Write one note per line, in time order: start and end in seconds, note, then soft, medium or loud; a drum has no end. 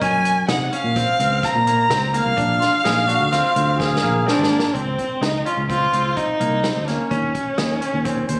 0.01 0.42 F#2 medium
0.01 0.34 C#4 medium
0.01 0.45 G#5 loud
0.01 kick loud
0.01 closed hi-hat medium
0.25 closed hi-hat medium
0.48 0.69 C3 medium
0.48 0.65 D#4 medium
0.48 0.71 F#5 medium
0.48 snare loud
0.48 closed hi-hat medium
0.73 0.89 C#4 medium
0.73 1.46 F5 medium
0.73 closed hi-hat medium
0.84 1.04 A#2 medium
0.96 1.12 C4 medium
0.96 kick loud
0.96 snare soft
0.96 closed hi-hat medium
1.19 1.40 C#2 medium
1.19 1.52 C4 medium
1.19 closed hi-hat medium
1.43 2.17 A#5 medium
1.43 kick loud
1.43 snare soft
1.43 closed hi-hat medium
1.55 1.85 A#2 medium
1.67 1.83 A#3 medium
1.67 closed hi-hat medium
1.90 2.20 C#2 medium
1.90 2.06 C4 medium
1.90 snare loud
1.90 closed hi-hat medium
2.14 2.30 A#3 medium
2.14 4.27 F5 medium
2.14 closed hi-hat medium
2.26 2.36 C2 medium
2.37 2.58 A#1 medium
2.37 2.69 D4 medium
2.37 kick loud
2.37 closed hi-hat medium
2.60 2.71 F4 medium
2.60 snare soft
2.60 closed hi-hat medium
2.84 3.15 A#1 medium
2.84 3.01 D#4 medium
2.84 3.09 G#4 medium
2.84 snare loud
2.84 closed hi-hat medium
3.07 3.24 D4 medium
3.07 3.31 F#4 medium
3.07 closed hi-hat medium
3.20 3.40 D2 medium
3.31 3.48 C4 medium
3.31 3.80 F4 medium
3.31 snare soft
3.31 closed hi-hat medium
3.55 3.96 D2 medium
3.55 3.88 C4 medium
3.55 closed hi-hat medium
3.78 4.73 G#4 medium
3.78 kick medium
3.78 snare medium
3.96 snare medium
4.03 4.24 A#1 medium
4.03 4.19 A#3 medium
4.26 4.43 C4 medium
4.26 4.77 D4 medium
4.26 snare medium
4.39 4.59 G#1 medium
4.43 snare medium
4.50 4.66 A#3 medium
4.59 snare medium
4.74 4.95 C#2 medium
4.74 5.07 C4 medium
4.74 5.24 C4 medium
4.74 kick medium
4.74 closed hi-hat medium
4.99 kick medium
4.99 closed hi-hat medium
5.21 5.41 C#2 medium
5.21 5.38 D#4 medium
5.21 5.45 D#4 medium
5.21 snare loud
5.21 closed hi-hat medium
5.45 5.62 C#4 medium
5.45 5.56 F4 medium
5.45 closed hi-hat medium
5.57 5.87 C#2 medium
5.69 5.85 C4 medium
5.69 6.18 F4 medium
5.69 kick loud
5.69 closed hi-hat medium
5.93 6.13 C#2 medium
5.93 6.25 C4 medium
5.93 closed hi-hat medium
6.16 6.88 D#4 medium
6.16 kick medium
6.16 closed hi-hat medium
6.40 6.70 C2 medium
6.40 6.56 A#3 medium
6.40 closed hi-hat medium
6.63 6.80 C4 medium
6.63 snare loud
6.63 closed hi-hat medium
6.76 6.96 D2 medium
6.87 7.04 A#3 medium
6.87 8.40 C#4 medium
6.87 snare soft
6.87 closed hi-hat soft
7.11 7.31 D#2 medium
7.11 7.43 C#4 medium
7.11 kick medium
7.11 closed hi-hat medium
7.35 kick medium
7.35 closed hi-hat medium
7.58 7.79 D#2 medium
7.58 7.74 D#4 medium
7.58 snare loud
7.58 closed hi-hat medium
7.81 7.98 C#4 medium
7.81 closed hi-hat medium
7.93 8.24 D#2 medium
8.05 8.21 C4 medium
8.05 kick medium
8.05 closed hi-hat medium
8.29 8.40 D#2 medium
8.29 8.40 C5 medium
8.29 closed hi-hat medium